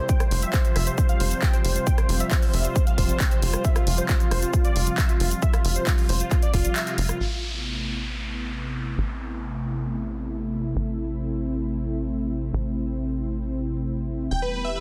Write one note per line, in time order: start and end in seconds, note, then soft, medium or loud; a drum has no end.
0.00 7.16 C3 medium
0.00 7.16 G3 medium
0.09 7.16 F3 medium
0.09 7.16 F4 medium
0.09 0.18 G5 loud
0.09 kick loud
0.09 closed hi-hat medium
0.09 shaker medium
0.20 0.29 C5 medium
0.20 cross-stick medium
0.20 closed hi-hat medium
0.20 shaker soft
0.31 0.45 F1 loud
0.31 0.40 C5 medium
0.31 open hi-hat loud
0.42 0.52 E5 medium
0.42 closed hi-hat medium
0.42 shaker medium
0.53 0.63 C5 medium
0.53 kick loud
0.53 clap loud
0.53 closed hi-hat medium
0.53 shaker medium
0.65 0.74 C5 medium
0.65 closed hi-hat medium
0.65 shaker soft
0.76 0.90 F1 loud
0.76 0.85 E5 medium
0.76 cross-stick medium
0.76 open hi-hat loud
0.87 0.96 C5 medium
0.87 closed hi-hat medium
0.87 shaker medium
0.98 1.07 C5 medium
0.98 kick loud
0.98 closed hi-hat medium
0.98 shaker medium
1.09 1.18 F5 medium
1.09 closed hi-hat medium
1.09 shaker soft
1.20 1.34 F1 medium
1.20 1.29 C5 medium
1.20 open hi-hat loud
1.31 1.40 C5 medium
1.31 closed hi-hat medium
1.31 shaker medium
1.42 1.52 G5 medium
1.42 kick loud
1.42 clap loud
1.42 closed hi-hat medium
1.42 shaker medium
1.53 1.63 C5 medium
1.53 closed hi-hat medium
1.53 shaker soft
1.65 1.79 F1 loud
1.65 1.74 C5 medium
1.65 open hi-hat loud
1.76 1.85 C5 medium
1.76 closed hi-hat medium
1.76 shaker medium
1.87 1.96 G5 loud
1.87 kick loud
1.87 closed hi-hat medium
1.87 shaker medium
1.98 2.07 C5 medium
1.98 cross-stick medium
1.98 closed hi-hat medium
1.98 shaker soft
2.09 2.23 F1 loud
2.09 2.18 C5 medium
2.09 open hi-hat medium
2.20 2.29 E5 medium
2.20 closed hi-hat medium
2.20 shaker medium
2.31 2.40 C5 medium
2.31 kick loud
2.31 clap loud
2.31 closed hi-hat medium
2.31 shaker medium
2.42 2.51 C5 medium
2.42 open hi-hat medium
2.42 shaker soft
2.53 2.68 F1 medium
2.53 2.63 E5 medium
2.53 open hi-hat loud
2.65 2.74 C5 medium
2.65 closed hi-hat medium
2.65 shaker medium
2.76 2.85 C5 medium
2.76 kick loud
2.76 closed hi-hat medium
2.76 shaker medium
2.87 2.96 F5 medium
2.87 closed hi-hat medium
2.87 shaker soft
2.98 3.12 F1 medium
2.98 3.07 C5 medium
2.98 kick medium
2.98 open hi-hat loud
3.09 3.18 C5 medium
3.09 closed hi-hat medium
3.09 shaker medium
3.20 3.29 G5 medium
3.20 kick loud
3.20 clap loud
3.20 closed hi-hat medium
3.20 shaker medium
3.31 3.40 C5 medium
3.31 closed hi-hat medium
3.31 shaker soft
3.42 3.57 F1 medium
3.42 3.51 C5 medium
3.42 open hi-hat loud
3.54 3.63 C5 medium
3.54 cross-stick medium
3.54 closed hi-hat medium
3.54 shaker medium
3.65 3.74 E5 loud
3.65 kick loud
3.65 closed hi-hat medium
3.65 shaker medium
3.76 3.85 F4 medium
3.76 cross-stick medium
3.76 closed hi-hat medium
3.76 shaker soft
3.87 4.01 F1 loud
3.87 3.96 F4 medium
3.87 open hi-hat loud
3.98 4.07 C5 medium
3.98 closed hi-hat medium
3.98 shaker medium
4.09 4.18 F4 medium
4.09 kick loud
4.09 clap loud
4.09 closed hi-hat medium
4.09 shaker medium
4.20 4.29 F4 medium
4.20 closed hi-hat medium
4.20 shaker soft
4.31 4.45 F1 loud
4.31 4.40 C5 medium
4.31 cross-stick medium
4.31 open hi-hat loud
4.42 4.52 F4 medium
4.42 closed hi-hat medium
4.42 shaker medium
4.53 kick loud
4.53 closed hi-hat medium
4.53 shaker medium
4.65 4.74 D5 medium
4.65 closed hi-hat medium
4.65 shaker soft
4.76 4.90 F1 medium
4.76 4.85 F4 medium
4.76 open hi-hat loud
4.87 4.96 F4 medium
4.87 closed hi-hat medium
4.87 shaker medium
4.98 5.07 E5 medium
4.98 kick loud
4.98 clap loud
4.98 closed hi-hat medium
4.98 shaker medium
5.09 5.18 F4 medium
5.09 closed hi-hat medium
5.09 shaker soft
5.20 5.34 F1 medium
5.20 5.29 F4 medium
5.20 open hi-hat loud
5.31 5.41 F4 medium
5.31 closed hi-hat medium
5.31 shaker medium
5.42 5.52 E5 loud
5.42 kick loud
5.42 closed hi-hat medium
5.42 shaker soft
5.54 5.63 F4 medium
5.54 cross-stick medium
5.54 closed hi-hat medium
5.54 shaker soft
5.65 5.79 F1 loud
5.65 5.74 F4 medium
5.65 open hi-hat loud
5.76 5.85 C5 medium
5.76 closed hi-hat medium
5.76 shaker medium
5.87 5.96 F4 medium
5.87 kick loud
5.87 clap loud
5.87 closed hi-hat medium
5.87 shaker soft
5.98 6.07 F4 medium
5.98 open hi-hat medium
5.98 shaker soft
6.09 6.23 F1 loud
6.09 6.18 C5 medium
6.09 open hi-hat loud
6.20 6.29 F4 medium
6.20 shaker medium
6.31 6.40 F4 medium
6.31 kick loud
6.31 clap soft
6.31 closed hi-hat medium
6.31 shaker medium
6.42 6.52 D5 medium
6.42 closed hi-hat medium
6.42 shaker soft
6.54 6.68 F1 medium
6.54 6.63 F4 medium
6.54 kick medium
6.54 open hi-hat loud
6.65 6.74 F4 medium
6.65 closed hi-hat medium
6.65 shaker medium
6.76 6.85 E5 medium
6.76 clap loud
6.76 closed hi-hat medium
6.76 shaker soft
6.87 6.96 F4 medium
6.87 closed hi-hat medium
6.87 shaker soft
6.98 7.12 F1 loud
6.98 7.07 F4 medium
6.98 open hi-hat loud
7.09 7.18 F4 medium
7.09 cross-stick medium
7.09 closed hi-hat medium
7.09 shaker medium
7.20 8.96 A1 medium
7.20 14.27 C3 medium
7.20 14.27 A3 medium
7.20 10.72 B3 medium
7.20 14.27 E4 medium
7.20 downlifter medium
8.98 10.74 A1 medium
10.20 shaker medium
10.31 shaker soft
10.42 shaker soft
10.65 shaker medium
10.76 12.51 A1 medium
10.76 14.28 C4 medium
10.76 shaker soft
10.87 shaker soft
11.09 shaker medium
11.20 shaker soft
11.31 shaker soft
11.53 shaker medium
11.65 shaker soft
11.76 shaker soft
11.98 shaker medium
12.09 shaker soft
12.20 shaker soft
12.42 shaker medium
12.53 14.29 A1 medium
12.53 shaker soft
12.65 shaker soft
12.87 shaker medium
12.98 shaker soft
13.09 shaker soft
13.31 shaker medium
13.42 shaker soft
13.53 shaker soft
13.76 shaker medium
13.87 shaker soft
13.98 shaker soft
14.20 shaker medium
14.31 14.80 E1 medium
14.31 14.80 E3 medium
14.31 14.80 G3 medium
14.31 14.80 B3 medium
14.31 14.80 G4 medium
14.31 14.40 G5 medium
14.31 shaker soft
14.42 14.51 B4 medium
14.53 14.63 B4 medium
14.64 14.74 E5 medium
14.76 14.80 B4 medium